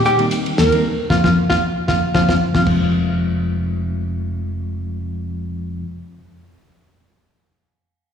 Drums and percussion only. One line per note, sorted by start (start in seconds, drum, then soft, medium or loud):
0.05 hi-hat pedal medium
0.19 ride soft
0.31 hi-hat pedal medium
0.31 ride medium
0.46 ride soft
0.58 snare medium
0.58 hi-hat pedal medium
0.72 ride soft
1.10 kick medium
1.10 snare medium
1.24 kick medium
1.24 snare medium
1.50 kick medium
1.50 snare medium
1.88 kick medium
1.88 snare medium
2.15 kick medium
2.15 snare medium
2.29 kick medium
2.29 snare medium
2.55 kick medium
2.55 snare medium
2.67 kick medium
2.67 crash medium